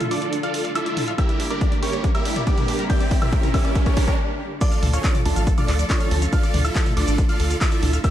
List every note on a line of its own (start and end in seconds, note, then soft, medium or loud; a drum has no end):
0.00 4.57 D3 medium
0.00 1.15 F3 medium
0.00 1.15 A3 medium
0.00 1.15 A4 medium
0.00 0.05 F5 medium
0.00 closed hi-hat medium
0.00 mid tom medium
0.00 riser medium
0.11 0.39 D4 medium
0.11 0.16 D4 medium
0.11 0.39 F4 medium
0.11 0.39 A4 medium
0.11 0.39 D5 medium
0.11 0.39 D6 medium
0.11 open hi-hat loud
0.22 0.26 D5 loud
0.22 closed hi-hat soft
0.33 0.39 D4 medium
0.33 closed hi-hat medium
0.43 0.71 F4 medium
0.43 0.71 A4 medium
0.43 0.71 D5 medium
0.43 0.71 F5 loud
0.43 0.48 F5 loud
0.43 0.71 F6 medium
0.43 closed hi-hat soft
0.54 0.61 A4 medium
0.54 open hi-hat loud
0.65 0.69 F5 medium
0.65 closed hi-hat medium
0.75 0.80 D4 medium
0.75 1.12 E4 medium
0.75 1.12 F4 medium
0.75 1.12 A4 medium
0.75 1.12 E5 medium
0.75 1.12 E6 medium
0.75 closed hi-hat medium
0.86 0.91 D5 loud
0.86 closed hi-hat soft
0.97 1.04 D4 medium
0.97 open hi-hat loud
0.97 mid tom medium
1.08 1.12 F5 loud
1.08 closed hi-hat medium
1.18 4.58 G3 medium
1.18 4.58 A#3 medium
1.18 4.58 E4 medium
1.18 1.46 E4 medium
1.18 1.25 G4 medium
1.18 1.46 G4 medium
1.18 4.58 G4 medium
1.18 1.46 A#4 medium
1.18 1.46 E5 loud
1.18 1.46 E6 loud
1.18 kick loud
1.18 closed hi-hat medium
1.29 1.33 D5 medium
1.29 closed hi-hat soft
1.40 1.44 D4 medium
1.40 open hi-hat loud
1.50 1.78 D4 medium
1.50 1.78 G4 medium
1.50 1.55 A#4 loud
1.50 1.78 A#4 medium
1.50 1.78 D5 loud
1.50 1.78 D6 medium
1.50 closed hi-hat soft
1.61 1.68 D4 medium
1.61 kick loud
1.61 closed hi-hat medium
1.72 1.76 D5 loud
1.72 closed hi-hat soft
1.83 2.10 C#4 medium
1.83 1.89 G4 medium
1.83 2.10 G4 medium
1.83 2.10 A#4 medium
1.83 2.10 C#5 medium
1.83 2.10 C#6 medium
1.83 open hi-hat loud
1.93 1.98 D5 medium
1.93 closed hi-hat medium
2.04 2.08 D4 medium
2.04 kick loud
2.04 closed hi-hat medium
2.15 2.42 E4 medium
2.15 2.42 G4 medium
2.15 2.19 A#4 loud
2.15 2.42 A#4 medium
2.15 2.42 E5 loud
2.15 2.42 E6 medium
2.15 closed hi-hat medium
2.25 2.32 D4 medium
2.25 open hi-hat loud
2.36 2.41 D5 loud
2.36 closed hi-hat medium
2.36 mid tom medium
2.47 2.83 D4 medium
2.47 2.83 G4 medium
2.47 2.54 G4 medium
2.47 2.83 A#4 medium
2.47 2.83 D5 medium
2.47 2.83 D6 medium
2.47 kick loud
2.47 closed hi-hat medium
2.58 2.62 D5 medium
2.58 closed hi-hat medium
2.58 mid tom medium
2.68 2.73 D4 medium
2.68 open hi-hat loud
2.79 2.83 A#4 loud
2.79 closed hi-hat medium
2.90 2.96 D4 medium
2.90 3.17 G4 medium
2.90 3.17 D5 medium
2.90 3.17 E5 medium
2.90 3.17 G5 loud
2.90 3.17 G6 loud
2.90 kick loud
2.90 closed hi-hat medium
3.00 3.05 D5 loud
3.00 closed hi-hat soft
3.11 3.18 G4 medium
3.11 kick loud
3.11 open hi-hat loud
3.22 3.49 E4 medium
3.22 3.49 G4 medium
3.22 3.49 A#4 medium
3.22 3.26 D5 medium
3.22 3.49 E5 medium
3.22 3.49 E6 medium
3.22 closed hi-hat medium
3.22 mid tom medium
3.33 3.37 D4 medium
3.33 kick loud
3.33 closed hi-hat medium
3.43 3.48 A#4 loud
3.43 closed hi-hat medium
3.43 mid tom medium
3.54 3.61 D4 medium
3.54 3.82 E4 medium
3.54 3.82 G4 medium
3.54 3.82 A#4 medium
3.54 3.82 E5 medium
3.54 3.81 E6 medium
3.54 kick loud
3.54 open hi-hat loud
3.65 3.69 D5 loud
3.65 closed hi-hat soft
3.75 3.82 G4 medium
3.75 kick loud
3.75 closed hi-hat medium
3.86 4.14 C#4 medium
3.86 4.14 G4 medium
3.86 4.14 A#4 medium
3.86 4.14 C#5 loud
3.86 3.91 D5 medium
3.86 4.14 C#6 medium
3.86 kick loud
3.86 closed hi-hat soft
3.97 4.01 D4 medium
3.97 kick loud
3.97 open hi-hat loud
4.08 4.12 A#4 loud
4.08 kick medium
4.08 closed hi-hat medium
4.61 8.10 D3 medium
4.61 8.01 F3 medium
4.61 8.01 A3 medium
4.61 4.68 D4 medium
4.61 4.89 D4 medium
4.61 4.89 F4 medium
4.61 8.01 A4 medium
4.61 4.89 A4 medium
4.61 4.89 D5 loud
4.61 4.89 D6 loud
4.61 kick loud
4.61 closed hi-hat medium
4.61 crash loud
4.61 shaker medium
4.72 4.76 F5 loud
4.72 closed hi-hat medium
4.72 shaker soft
4.83 4.99 D2 loud
4.83 4.89 A4 medium
4.83 open hi-hat loud
4.83 mid tom medium
4.93 5.21 C#4 medium
4.93 5.21 F4 medium
4.93 5.21 A4 medium
4.93 5.21 C#5 loud
4.93 4.98 F5 medium
4.93 5.21 C#6 medium
4.93 closed hi-hat medium
4.93 shaker medium
5.04 5.09 D4 medium
5.04 kick loud
5.04 clap loud
5.04 closed hi-hat medium
5.04 shaker medium
5.15 5.19 D5 loud
5.15 closed hi-hat medium
5.15 mid tom medium
5.15 shaker soft
5.25 5.34 D2 medium
5.25 5.53 A3 medium
5.25 5.32 D4 medium
5.25 5.53 D4 medium
5.25 5.53 F4 medium
5.25 5.53 A4 medium
5.25 5.53 A5 medium
5.25 open hi-hat loud
5.36 5.52 A1 medium
5.36 5.41 F5 loud
5.36 closed hi-hat medium
5.36 shaker medium
5.47 5.54 A4 medium
5.47 kick loud
5.47 closed hi-hat medium
5.47 shaker medium
5.58 5.85 D4 medium
5.58 5.85 F4 medium
5.58 5.85 A4 medium
5.58 5.85 D5 loud
5.58 5.62 F5 medium
5.58 5.85 D6 medium
5.58 closed hi-hat medium
5.58 mid tom medium
5.58 shaker soft
5.68 5.85 D2 medium
5.68 5.73 D4 medium
5.68 clap medium
5.68 open hi-hat loud
5.79 5.84 D5 loud
5.79 closed hi-hat medium
5.79 shaker medium
5.90 6.26 C#4 medium
5.90 5.96 D4 medium
5.90 6.26 F4 medium
5.90 6.26 A4 medium
5.90 6.26 C#5 medium
5.90 6.26 C#6 loud
5.90 kick loud
5.90 clap loud
5.90 closed hi-hat medium
5.90 shaker medium
6.00 6.05 F5 loud
6.00 closed hi-hat medium
6.00 shaker soft
6.11 6.27 D2 loud
6.11 6.18 A4 medium
6.11 open hi-hat loud
6.22 6.26 F5 medium
6.22 closed hi-hat medium
6.22 shaker medium
6.33 6.37 D4 medium
6.33 6.60 F4 medium
6.33 6.60 A4 medium
6.33 6.60 D5 medium
6.33 6.60 F5 loud
6.33 6.60 F6 loud
6.33 kick loud
6.33 closed hi-hat medium
6.33 shaker soft
6.43 6.48 D5 loud
6.43 closed hi-hat medium
6.43 shaker soft
6.54 6.70 D2 loud
6.54 6.61 D4 medium
6.54 open hi-hat loud
6.54 mid tom medium
6.65 6.92 E4 medium
6.65 6.92 F4 medium
6.65 6.92 A4 medium
6.65 6.92 E5 medium
6.65 6.69 F5 loud
6.65 6.92 E6 medium
6.65 closed hi-hat medium
6.65 shaker medium
6.75 6.82 A4 medium
6.75 kick loud
6.75 clap loud
6.75 closed hi-hat medium
6.75 shaker soft
6.86 6.91 F5 medium
6.86 closed hi-hat medium
6.86 mid tom medium
6.86 shaker soft
6.97 7.05 D2 medium
6.97 7.01 D4 medium
6.97 7.24 D4 medium
6.97 7.24 F4 medium
6.97 7.24 A4 medium
6.97 7.24 D5 medium
6.97 7.24 D6 medium
6.97 open hi-hat loud
7.07 7.24 A1 loud
7.07 7.12 D5 loud
7.07 closed hi-hat medium
7.07 shaker medium
7.18 7.25 D4 medium
7.18 kick loud
7.18 closed hi-hat medium
7.18 shaker soft
7.29 7.56 F4 medium
7.29 7.56 A4 medium
7.29 7.56 D5 medium
7.29 7.56 F5 loud
7.29 7.34 F5 loud
7.29 7.56 F6 loud
7.29 closed hi-hat medium
7.29 shaker soft
7.40 7.56 D2 medium
7.40 7.46 A4 medium
7.40 open hi-hat loud
7.50 7.55 F5 medium
7.50 closed hi-hat medium
7.50 shaker medium
7.61 7.66 D4 medium
7.61 7.98 E4 medium
7.61 7.98 F4 medium
7.61 7.98 A4 medium
7.61 7.98 E5 loud
7.61 7.98 E6 medium
7.61 kick loud
7.61 clap loud
7.61 closed hi-hat medium
7.61 shaker medium
7.72 7.76 D5 loud
7.72 closed hi-hat medium
7.72 shaker soft
7.83 7.99 D2 loud
7.83 7.89 D4 medium
7.83 open hi-hat loud
7.83 mid tom medium
7.93 7.98 F5 loud
7.93 closed hi-hat medium
7.93 shaker medium
8.04 8.10 G3 medium
8.04 8.10 A#3 medium
8.04 8.10 E4 medium
8.04 8.10 G4 medium
8.04 8.10 A#4 medium
8.04 8.10 E5 loud
8.04 8.10 E6 loud
8.04 kick loud
8.04 closed hi-hat medium
8.04 shaker medium